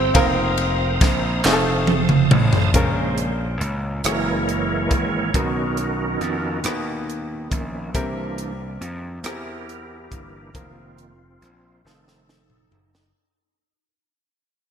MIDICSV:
0, 0, Header, 1, 6, 480
1, 0, Start_track
1, 0, Tempo, 867052
1, 84, Time_signature, 6, 3, 24, 8
1, 8138, End_track
2, 0, Start_track
2, 0, Title_t, "Grand piano"
2, 0, Program_c, 0, 0
2, 0, Control_c, 0, 64, 127
2, 0, Note_on_c, 0, 58, 73
2, 0, Note_on_c, 0, 60, 68
2, 0, Note_on_c, 0, 64, 67
2, 0, Note_on_c, 0, 67, 65
2, 0, Note_on_c, 0, 70, 79
2, 78, Note_off_c, 0, 58, 0
2, 78, Note_on_c, 0, 58, 95
2, 79, Note_off_c, 0, 60, 0
2, 79, Note_on_c, 0, 60, 86
2, 84, Note_on_c, 0, 63, 85
2, 87, Note_on_c, 0, 65, 85
2, 88, Note_off_c, 0, 70, 0
2, 88, Note_on_c, 0, 70, 116
2, 91, Control_c, 0, 64, 0
2, 92, Note_off_c, 0, 67, 0
2, 96, Note_off_c, 0, 64, 0
2, 175, Control_c, 0, 64, 127
2, 600, Note_off_c, 0, 58, 0
2, 601, Note_off_c, 0, 60, 0
2, 603, Note_off_c, 0, 63, 0
2, 605, Note_off_c, 0, 65, 0
2, 605, Note_off_c, 0, 70, 0
2, 800, Note_on_c, 0, 57, 81
2, 800, Note_on_c, 0, 60, 75
2, 806, Note_on_c, 0, 63, 74
2, 808, Control_c, 0, 64, 0
2, 808, Note_on_c, 0, 65, 79
2, 808, Note_on_c, 0, 68, 76
2, 841, Note_off_c, 0, 68, 0
2, 846, Note_on_c, 0, 69, 90
2, 889, Control_c, 0, 64, 127
2, 1320, Note_off_c, 0, 57, 0
2, 1320, Note_off_c, 0, 60, 0
2, 1323, Note_off_c, 0, 63, 0
2, 1324, Note_off_c, 0, 65, 0
2, 1343, Note_off_c, 0, 69, 0
2, 1516, Note_on_c, 0, 61, 78
2, 1519, Note_on_c, 0, 65, 74
2, 1523, Note_on_c, 0, 68, 70
2, 1524, Note_on_c, 0, 46, 62
2, 1526, Control_c, 0, 64, 0
2, 1526, Note_on_c, 0, 70, 94
2, 1613, Control_c, 0, 64, 127
2, 2038, Note_off_c, 0, 61, 0
2, 2039, Note_off_c, 0, 65, 0
2, 2041, Note_off_c, 0, 68, 0
2, 2043, Note_off_c, 0, 70, 0
2, 2218, Note_off_c, 0, 46, 0
2, 2239, Note_on_c, 0, 61, 57
2, 2240, Note_on_c, 0, 64, 53
2, 2243, Note_on_c, 0, 66, 50
2, 2244, Note_on_c, 0, 68, 53
2, 2245, Control_c, 0, 64, 0
2, 2276, Note_off_c, 0, 68, 0
2, 2281, Note_on_c, 0, 70, 63
2, 2347, Control_c, 0, 64, 127
2, 2759, Note_off_c, 0, 61, 0
2, 2759, Note_off_c, 0, 64, 0
2, 2761, Note_off_c, 0, 66, 0
2, 2780, Note_off_c, 0, 70, 0
2, 2959, Note_on_c, 0, 59, 65
2, 2961, Note_on_c, 0, 47, 54
2, 2961, Note_on_c, 0, 63, 60
2, 2962, Control_c, 0, 64, 0
2, 2965, Note_on_c, 0, 66, 62
2, 2967, Note_on_c, 0, 70, 67
2, 3066, Control_c, 0, 64, 127
2, 3479, Note_off_c, 0, 59, 0
2, 3479, Note_off_c, 0, 63, 0
2, 3482, Note_off_c, 0, 66, 0
2, 3483, Note_off_c, 0, 70, 0
2, 3656, Note_off_c, 0, 47, 0
2, 3673, Note_on_c, 0, 59, 65
2, 3679, Note_on_c, 0, 63, 61
2, 3679, Note_on_c, 0, 66, 63
2, 3684, Note_on_c, 0, 71, 74
2, 4196, Note_off_c, 0, 59, 0
2, 4199, Note_off_c, 0, 63, 0
2, 4199, Note_off_c, 0, 66, 0
2, 4201, Note_off_c, 0, 71, 0
2, 4396, Note_on_c, 0, 60, 86
2, 4397, Note_on_c, 0, 64, 71
2, 4399, Note_on_c, 0, 48, 67
2, 4402, Note_on_c, 0, 67, 72
2, 4402, Note_on_c, 0, 70, 91
2, 4404, Control_c, 0, 64, 0
2, 4499, Control_c, 0, 64, 127
2, 4918, Note_off_c, 0, 60, 0
2, 4918, Note_off_c, 0, 64, 0
2, 4921, Note_off_c, 0, 67, 0
2, 4921, Note_off_c, 0, 70, 0
2, 5096, Note_off_c, 0, 48, 0
2, 5113, Note_on_c, 0, 60, 59
2, 5113, Note_on_c, 0, 64, 53
2, 5117, Note_on_c, 0, 67, 48
2, 5125, Note_on_c, 0, 70, 67
2, 5637, Note_off_c, 0, 60, 0
2, 5637, Note_off_c, 0, 64, 0
2, 5639, Note_off_c, 0, 67, 0
2, 5643, Note_off_c, 0, 70, 0
2, 5833, Note_on_c, 0, 60, 65
2, 5836, Note_on_c, 0, 63, 55
2, 5841, Note_on_c, 0, 65, 61
2, 5842, Note_on_c, 0, 70, 70
2, 5846, Control_c, 0, 64, 0
2, 5928, Control_c, 0, 64, 127
2, 6358, Note_off_c, 0, 60, 0
2, 6359, Note_off_c, 0, 63, 0
2, 6362, Note_off_c, 0, 65, 0
2, 6362, Note_off_c, 0, 70, 0
2, 6559, Note_on_c, 0, 60, 53
2, 6564, Note_on_c, 0, 63, 50
2, 6567, Control_c, 0, 64, 0
2, 6567, Note_on_c, 0, 65, 49
2, 6568, Note_on_c, 0, 69, 61
2, 6652, Control_c, 0, 64, 127
2, 7082, Note_off_c, 0, 60, 0
2, 7084, Note_off_c, 0, 63, 0
2, 7086, Note_off_c, 0, 65, 0
2, 7087, Note_off_c, 0, 69, 0
2, 7290, Control_c, 0, 64, 0
2, 8138, End_track
3, 0, Start_track
3, 0, Title_t, "Tonewheel organ"
3, 0, Program_c, 1, 16
3, 0, Note_on_c, 1, 72, 67
3, 0, Note_on_c, 1, 79, 59
3, 0, Note_on_c, 1, 82, 59
3, 0, Note_on_c, 1, 88, 75
3, 68, Note_off_c, 1, 79, 0
3, 71, Note_off_c, 1, 88, 0
3, 78, Note_on_c, 1, 77, 62
3, 82, Note_on_c, 1, 87, 70
3, 779, Note_off_c, 1, 82, 0
3, 797, Note_on_c, 1, 81, 60
3, 1497, Note_off_c, 1, 72, 0
3, 1501, Note_off_c, 1, 77, 0
3, 1504, Note_off_c, 1, 87, 0
3, 1510, Note_off_c, 1, 81, 0
3, 1521, Note_on_c, 1, 49, 49
3, 1522, Note_on_c, 1, 56, 42
3, 1526, Note_on_c, 1, 72, 52
3, 1838, Note_off_c, 1, 49, 0
3, 1839, Note_off_c, 1, 56, 0
3, 1841, Note_off_c, 1, 72, 0
3, 2241, Note_on_c, 1, 52, 46
3, 2242, Note_on_c, 1, 56, 39
3, 2242, Note_on_c, 1, 73, 83
3, 2243, Note_on_c, 1, 64, 62
3, 2247, Note_on_c, 1, 70, 55
3, 2249, Note_on_c, 1, 58, 49
3, 2936, Note_off_c, 1, 52, 0
3, 2937, Note_off_c, 1, 56, 0
3, 2937, Note_off_c, 1, 64, 0
3, 2939, Note_off_c, 1, 70, 0
3, 2940, Note_off_c, 1, 58, 0
3, 2955, Note_on_c, 1, 51, 45
3, 2957, Note_on_c, 1, 66, 72
3, 2959, Note_on_c, 1, 59, 54
3, 2961, Note_on_c, 1, 61, 51
3, 2962, Note_on_c, 1, 70, 45
3, 2965, Note_on_c, 1, 63, 54
3, 2980, Note_off_c, 1, 73, 0
3, 3653, Note_off_c, 1, 51, 0
3, 3654, Note_off_c, 1, 66, 0
3, 3655, Note_off_c, 1, 59, 0
3, 3656, Note_off_c, 1, 61, 0
3, 3657, Note_off_c, 1, 70, 0
3, 3658, Note_off_c, 1, 63, 0
3, 4151, Note_on_c, 1, 51, 45
3, 4156, Note_on_c, 1, 58, 38
3, 4158, Note_on_c, 1, 61, 46
3, 4371, Note_off_c, 1, 51, 0
3, 4374, Note_off_c, 1, 58, 0
3, 4375, Note_off_c, 1, 61, 0
3, 4404, Note_on_c, 1, 52, 46
3, 4410, Note_on_c, 1, 58, 42
3, 4410, Note_on_c, 1, 62, 53
3, 4720, Note_off_c, 1, 52, 0
3, 4723, Note_off_c, 1, 58, 0
3, 4723, Note_off_c, 1, 62, 0
3, 5114, Note_on_c, 1, 64, 54
3, 5115, Note_on_c, 1, 70, 83
3, 5123, Note_on_c, 1, 67, 59
3, 5593, Note_on_c, 1, 52, 43
3, 5595, Note_on_c, 1, 58, 40
3, 5598, Note_on_c, 1, 62, 46
3, 5814, Note_off_c, 1, 52, 0
3, 5814, Note_off_c, 1, 64, 0
3, 5815, Note_off_c, 1, 58, 0
3, 5816, Note_off_c, 1, 62, 0
3, 5819, Note_off_c, 1, 67, 0
3, 5842, Note_on_c, 1, 60, 53
3, 5843, Note_on_c, 1, 51, 44
3, 5844, Note_on_c, 1, 58, 57
3, 5847, Note_on_c, 1, 65, 78
3, 5859, Note_off_c, 1, 70, 0
3, 6161, Note_off_c, 1, 51, 0
3, 6162, Note_off_c, 1, 58, 0
3, 6542, Note_off_c, 1, 60, 0
3, 6542, Note_off_c, 1, 65, 0
3, 6561, Note_on_c, 1, 51, 40
3, 6568, Note_on_c, 1, 57, 41
3, 6568, Note_on_c, 1, 60, 47
3, 6568, Note_on_c, 1, 63, 43
3, 6569, Note_on_c, 1, 69, 68
3, 6880, Note_off_c, 1, 51, 0
3, 6884, Note_off_c, 1, 57, 0
3, 6884, Note_off_c, 1, 60, 0
3, 7084, Note_off_c, 1, 69, 0
3, 7263, Note_off_c, 1, 63, 0
3, 8138, End_track
4, 0, Start_track
4, 0, Title_t, "Bassoon"
4, 0, Program_c, 2, 70
4, 0, Note_on_c, 2, 60, 95
4, 1048, Note_off_c, 2, 60, 0
4, 8138, End_track
5, 0, Start_track
5, 0, Title_t, "Slap bass"
5, 0, Program_c, 3, 36
5, 0, Note_on_c, 3, 31, 91
5, 65, Note_off_c, 3, 31, 0
5, 82, Note_on_c, 3, 29, 95
5, 539, Note_off_c, 3, 29, 0
5, 560, Note_on_c, 3, 34, 95
5, 781, Note_off_c, 3, 34, 0
5, 801, Note_on_c, 3, 29, 96
5, 1257, Note_off_c, 3, 29, 0
5, 1276, Note_on_c, 3, 33, 99
5, 1498, Note_off_c, 3, 33, 0
5, 1518, Note_on_c, 3, 34, 82
5, 1975, Note_off_c, 3, 34, 0
5, 1997, Note_on_c, 3, 37, 78
5, 2218, Note_off_c, 3, 37, 0
5, 2236, Note_on_c, 3, 30, 80
5, 2694, Note_off_c, 3, 30, 0
5, 2721, Note_on_c, 3, 32, 84
5, 2939, Note_off_c, 3, 32, 0
5, 2958, Note_on_c, 3, 35, 81
5, 3415, Note_off_c, 3, 35, 0
5, 3435, Note_on_c, 3, 41, 79
5, 3656, Note_off_c, 3, 41, 0
5, 3676, Note_on_c, 3, 39, 74
5, 4134, Note_off_c, 3, 39, 0
5, 4161, Note_on_c, 3, 34, 75
5, 4380, Note_off_c, 3, 34, 0
5, 4399, Note_on_c, 3, 36, 86
5, 4856, Note_off_c, 3, 36, 0
5, 4877, Note_on_c, 3, 41, 84
5, 5098, Note_off_c, 3, 41, 0
5, 5113, Note_on_c, 3, 40, 71
5, 5574, Note_off_c, 3, 40, 0
5, 5601, Note_on_c, 3, 31, 78
5, 5821, Note_off_c, 3, 31, 0
5, 5840, Note_on_c, 3, 29, 78
5, 6298, Note_off_c, 3, 29, 0
5, 6319, Note_on_c, 3, 34, 70
5, 6540, Note_off_c, 3, 34, 0
5, 6557, Note_on_c, 3, 29, 75
5, 7017, Note_off_c, 3, 29, 0
5, 7036, Note_on_c, 3, 30, 59
5, 7260, Note_off_c, 3, 30, 0
5, 8138, End_track
6, 0, Start_track
6, 0, Title_t, "Drums"
6, 81, Note_on_c, 9, 51, 69
6, 83, Note_on_c, 9, 36, 114
6, 137, Note_off_c, 9, 51, 0
6, 138, Note_off_c, 9, 36, 0
6, 318, Note_on_c, 9, 51, 48
6, 374, Note_off_c, 9, 51, 0
6, 560, Note_on_c, 9, 36, 104
6, 560, Note_on_c, 9, 51, 54
6, 570, Note_on_c, 9, 38, 33
6, 615, Note_off_c, 9, 51, 0
6, 616, Note_off_c, 9, 36, 0
6, 625, Note_off_c, 9, 38, 0
6, 799, Note_on_c, 9, 39, 107
6, 807, Note_on_c, 9, 38, 61
6, 855, Note_off_c, 9, 39, 0
6, 863, Note_off_c, 9, 38, 0
6, 1037, Note_on_c, 9, 48, 77
6, 1093, Note_off_c, 9, 48, 0
6, 1156, Note_on_c, 9, 47, 85
6, 1212, Note_off_c, 9, 47, 0
6, 1279, Note_on_c, 9, 45, 113
6, 1335, Note_off_c, 9, 45, 0
6, 1399, Note_on_c, 9, 43, 99
6, 1454, Note_off_c, 9, 43, 0
6, 1517, Note_on_c, 9, 42, 69
6, 1518, Note_on_c, 9, 36, 97
6, 1573, Note_off_c, 9, 36, 0
6, 1573, Note_off_c, 9, 42, 0
6, 1758, Note_on_c, 9, 42, 46
6, 1813, Note_off_c, 9, 42, 0
6, 1999, Note_on_c, 9, 42, 36
6, 2055, Note_off_c, 9, 42, 0
6, 2237, Note_on_c, 9, 42, 80
6, 2249, Note_on_c, 9, 37, 94
6, 2293, Note_off_c, 9, 42, 0
6, 2304, Note_off_c, 9, 37, 0
6, 2484, Note_on_c, 9, 42, 38
6, 2539, Note_off_c, 9, 42, 0
6, 2717, Note_on_c, 9, 42, 45
6, 2719, Note_on_c, 9, 36, 82
6, 2772, Note_off_c, 9, 42, 0
6, 2774, Note_off_c, 9, 36, 0
6, 2958, Note_on_c, 9, 36, 93
6, 2959, Note_on_c, 9, 42, 72
6, 3013, Note_off_c, 9, 36, 0
6, 3014, Note_off_c, 9, 42, 0
6, 3196, Note_on_c, 9, 42, 45
6, 3251, Note_off_c, 9, 42, 0
6, 3439, Note_on_c, 9, 42, 34
6, 3448, Note_on_c, 9, 37, 26
6, 3494, Note_off_c, 9, 42, 0
6, 3504, Note_off_c, 9, 37, 0
6, 3675, Note_on_c, 9, 42, 81
6, 3687, Note_on_c, 9, 37, 88
6, 3731, Note_off_c, 9, 42, 0
6, 3742, Note_off_c, 9, 37, 0
6, 3928, Note_on_c, 9, 42, 40
6, 3983, Note_off_c, 9, 42, 0
6, 4160, Note_on_c, 9, 36, 80
6, 4162, Note_on_c, 9, 42, 50
6, 4216, Note_off_c, 9, 36, 0
6, 4217, Note_off_c, 9, 42, 0
6, 4399, Note_on_c, 9, 36, 88
6, 4401, Note_on_c, 9, 42, 68
6, 4454, Note_off_c, 9, 36, 0
6, 4456, Note_off_c, 9, 42, 0
6, 4640, Note_on_c, 9, 42, 43
6, 4695, Note_off_c, 9, 42, 0
6, 4881, Note_on_c, 9, 42, 35
6, 4937, Note_off_c, 9, 42, 0
6, 5116, Note_on_c, 9, 42, 73
6, 5127, Note_on_c, 9, 37, 89
6, 5171, Note_off_c, 9, 42, 0
6, 5182, Note_off_c, 9, 37, 0
6, 5366, Note_on_c, 9, 42, 36
6, 5421, Note_off_c, 9, 42, 0
6, 5600, Note_on_c, 9, 36, 74
6, 5602, Note_on_c, 9, 42, 48
6, 5656, Note_off_c, 9, 36, 0
6, 5658, Note_off_c, 9, 42, 0
6, 5839, Note_on_c, 9, 36, 87
6, 5840, Note_on_c, 9, 42, 66
6, 5895, Note_off_c, 9, 36, 0
6, 5896, Note_off_c, 9, 42, 0
6, 6081, Note_on_c, 9, 42, 44
6, 6136, Note_off_c, 9, 42, 0
6, 6324, Note_on_c, 9, 42, 35
6, 6334, Note_on_c, 9, 37, 26
6, 6379, Note_off_c, 9, 42, 0
6, 6389, Note_off_c, 9, 37, 0
6, 6569, Note_on_c, 9, 38, 44
6, 6624, Note_off_c, 9, 38, 0
6, 6688, Note_on_c, 9, 38, 45
6, 6743, Note_off_c, 9, 38, 0
6, 6805, Note_on_c, 9, 38, 54
6, 6861, Note_off_c, 9, 38, 0
6, 6919, Note_on_c, 9, 45, 57
6, 6974, Note_off_c, 9, 45, 0
6, 7042, Note_on_c, 9, 43, 73
6, 7097, Note_off_c, 9, 43, 0
6, 7168, Note_on_c, 9, 38, 63
6, 7223, Note_off_c, 9, 38, 0
6, 8138, End_track
0, 0, End_of_file